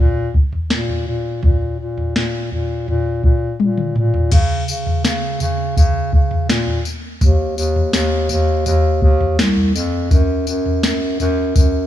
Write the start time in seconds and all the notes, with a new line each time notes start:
0.00 A#2
0.34 kick
0.52 floor tom
0.70 A#2, snare
0.88 floor tom
1.07 A#2
1.43 A#2, kick, floor tom
1.79 A#2
1.98 floor tom
2.15 A#2, snare
2.51 A#2, floor tom
2.88 A#2, floor tom
3.24 A#2, kick
3.60 A#2, high tom
3.78 mid tom
3.96 A#2, mid tom
4.14 floor tom
4.32 C#3, kick, floor tom, crash, tambourine
4.68 C#3, tambourine
4.86 floor tom
5.05 C#3, snare, tambourine
5.40 C#3, floor tom, tambourine
5.77 C#3, kick, floor tom, tambourine
6.13 C#3, kick
6.31 floor tom
6.49 A#2, snare, tambourine
6.67 floor tom
6.85 tambourine
7.21 D#2, kick, floor tom, tambourine
7.57 D#2, tambourine
7.76 floor tom
7.93 D#2, snare, tambourine
8.29 D#2, floor tom, tambourine
8.66 D#2, floor tom, tambourine
9.02 D#2, kick
9.21 floor tom
9.39 C2, snare, tambourine
9.57 floor tom
9.74 F2, tambourine
10.11 F#2, kick, floor tom, tambourine
10.47 F#2, tambourine
10.66 floor tom
10.83 F#2, snare, tambourine
11.19 F#2, floor tom, tambourine
11.56 F#2, kick, floor tom, tambourine